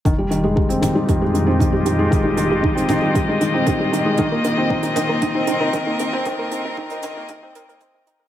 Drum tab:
HH |x-x--xx-x-x-x-x-|x-x--xx-x-x-x-x-|x-x--xx-x-x-x-x-|x-x--xx-x-xxx-x-|
T2 |------o---------|------o---------|------o---------|------o---------|
BD |o---o---o---o---|o---o---o---o---|o---o---o---o---|o---o---o---o---|